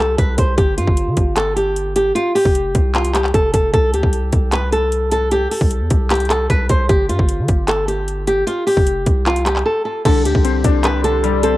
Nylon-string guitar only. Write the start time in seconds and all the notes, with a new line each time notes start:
0.00 A4
0.18 B4
0.38 C5
0.57 G4
0.77 F4
1.37 A4
1.56 G4
1.96 G4
2.15 F4
2.35 G4
2.95 F4
3.14 G4
3.34 A4
3.53 A4
3.74 A4
3.94 G4
4.53 B4
4.72 A4
5.12 A4
5.31 G4
5.51 A4
6.11 G4
6.30 A4
6.50 B4
6.70 C5
6.89 G4
7.09 F4
7.68 A4
7.88 G4
8.27 G4
8.47 F4
8.67 G4
9.27 F4
9.46 G4
9.66 A4
9.85 A4
10.05 A4
10.26 G4
10.84 B4
11.04 A4
11.43 A4